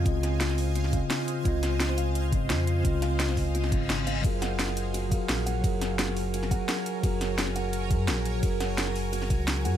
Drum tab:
RD |----------------|----------------|----------------|x-x-x-x-x-x-x-x-|
HH |x-x-x-o-x-x-x-x-|x-x-x-x-x-x-x-x-|x-x-x-o-x-x-x-x-|x-x-x-x-x-x-x-x-|
SD |--o-oo---o--o---|--o-oo------o---|--o-oo---o--oo--|--o-oo------o---|
BD |o---------o-----|o---------o-----|o-----o---o-----|o---------o-----|

RD |x-x-x-x-x-x-x-x-|x-x-x-x-x-x-x-x-|x-x-x-x-x-x-x-x-|
HH |x-x-x-o-x-x-x-x-|x-x-x-x-x-x-x-x-|x-x-x-o-x-x-x-x-|
SD |--o-oo---o--o---|--o-oo------o---|--o-oo---o--oo--|
BD |o---------o-----|o---------o-----|o---------o-----|